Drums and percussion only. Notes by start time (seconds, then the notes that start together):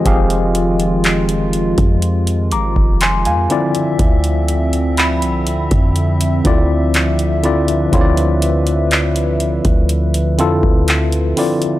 0.06 kick, closed hi-hat
0.30 closed hi-hat
0.55 closed hi-hat
0.80 closed hi-hat
1.04 clap, closed hi-hat
1.29 closed hi-hat
1.53 closed hi-hat
1.78 kick, closed hi-hat
2.02 closed hi-hat
2.27 closed hi-hat
2.51 closed hi-hat
2.76 kick
3.01 clap, closed hi-hat
3.25 closed hi-hat
3.50 closed hi-hat
3.75 closed hi-hat
3.99 kick, closed hi-hat
4.24 closed hi-hat
4.48 closed hi-hat
4.73 closed hi-hat
4.97 clap, closed hi-hat
5.22 closed hi-hat
5.47 closed hi-hat
5.71 kick, closed hi-hat
5.96 closed hi-hat
6.21 closed hi-hat
6.45 kick, closed hi-hat
6.94 clap, closed hi-hat
7.19 closed hi-hat
7.44 closed hi-hat
7.68 closed hi-hat
7.93 kick, closed hi-hat
8.17 closed hi-hat
8.42 closed hi-hat
8.67 closed hi-hat
8.91 clap, closed hi-hat
9.16 closed hi-hat
9.40 closed hi-hat
9.65 kick, closed hi-hat
9.89 closed hi-hat
10.14 closed hi-hat
10.39 closed hi-hat
10.63 kick
10.88 clap, closed hi-hat
11.12 closed hi-hat
11.37 closed hi-hat, open hi-hat
11.62 closed hi-hat